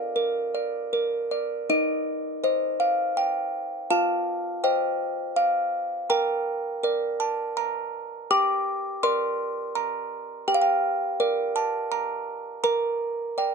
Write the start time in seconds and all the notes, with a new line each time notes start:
Already playing: A#4 D5 F5
0.16 A#4
0.55 D5
0.93 A#4
1.31 D5
1.70 D#4 D#5
2.44 C5 D#5
2.80 F5
3.17 G5
3.90 F4 F5 A5
4.64 C5 D#5 G5
5.36 F5
6.10 A#4 G5 A#5
6.83 A#4 D5
7.20 A5
7.57 A#5
8.31 G4 G5 D6
9.03 A#4 D5 C6
9.75 A#5
10.48 G4 G5
10.54 F5
10.62 G5
11.20 A#4 D5
11.56 A5
11.92 A#5
12.64 A#4 A#5
13.38 D5 G5